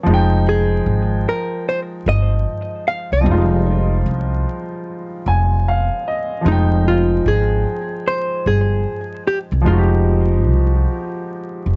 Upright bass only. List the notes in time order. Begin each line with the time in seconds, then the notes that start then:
0.06 F1
0.86 G#1
2.06 G1
3.12 C2
3.26 F1
4.06 C2
5.26 F1
6.46 F1
7.26 G#1
8.46 G1
9.52 C2
9.66 F1
10.46 C2
11.66 F1